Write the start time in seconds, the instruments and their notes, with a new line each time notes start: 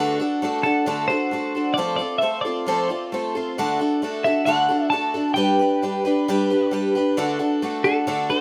Already playing: twelve-string acoustic guitar D3 A3 D4 F#4
0.00 twelve-string acoustic guitar A4
0.20 twelve-string acoustic guitar D4 F#4 A4
0.42 twelve-string acoustic guitar A3 D4 F#4 A4
0.63 twelve-string acoustic guitar D4 F#4 A4, clean electric guitar A4
0.86 twelve-string acoustic guitar D3 A3 D4 F#4 A4
1.08 twelve-string acoustic guitar F#4 A4, clean electric guitar C5
1.12 twelve-string acoustic guitar D4
1.31 twelve-string acoustic guitar A3 D4 F#4 A4
1.55 twelve-string acoustic guitar D4 F#4 A4
1.74 twelve-string acoustic guitar F3 A3, clean electric guitar D5
1.78 twelve-string acoustic guitar C4 F4 A4
1.96 twelve-string acoustic guitar F4 A4, clean electric guitar D5
2.01 twelve-string acoustic guitar C4
2.18 twelve-string acoustic guitar A3 C4, clean electric guitar E5
2.23 twelve-string acoustic guitar F4 A4
2.41 twelve-string acoustic guitar A4, clean electric guitar D5
2.46 twelve-string acoustic guitar C4 F4
2.66 twelve-string acoustic guitar F3 A3 C4 F4 A4
2.89 twelve-string acoustic guitar C4 F4 A4
3.12 twelve-string acoustic guitar A3 C4 F4 A4
3.35 twelve-string acoustic guitar C4 F4 A4
3.58 twelve-string acoustic guitar D3 A3 D4 F#4 A4
3.79 twelve-string acoustic guitar D4 F#4 A4
4.02 twelve-string acoustic guitar A3 D4 F#4 A4
4.24 twelve-string acoustic guitar D4 F#4 A4, clean electric guitar E5
4.45 twelve-string acoustic guitar D3 A3 D4 F#4 A4, clean electric guitar F#5
4.69 twelve-string acoustic guitar D4 F#4 A4
4.90 twelve-string acoustic guitar A3 D4 F#4 A4, clean electric guitar A5
5.14 twelve-string acoustic guitar D4 F#4 A4
5.34 twelve-string acoustic guitar G3 D4 G4 B4, clean electric guitar G5
5.59 twelve-string acoustic guitar D4 G4 B4
5.82 twelve-string acoustic guitar G3 D4 G4 B4
6.05 twelve-string acoustic guitar D4 G4 B4
6.28 twelve-string acoustic guitar G3 D4 G4 B4
6.50 twelve-string acoustic guitar D4 G4 B4
6.71 twelve-string acoustic guitar G3 D4 G4 B4
6.95 twelve-string acoustic guitar D4 G4 B4
7.17 twelve-string acoustic guitar D3 A3 D4 F#4 A4
7.39 twelve-string acoustic guitar D4 F#4 A4
7.62 twelve-string acoustic guitar A3 D4 F#4 A4
7.84 twelve-string acoustic guitar D4 F#4 A4, clean electric guitar A4
8.07 twelve-string acoustic guitar D3 A3 D4 F#4 A4
8.29 twelve-string acoustic guitar D4 F#4 A4, clean electric guitar C5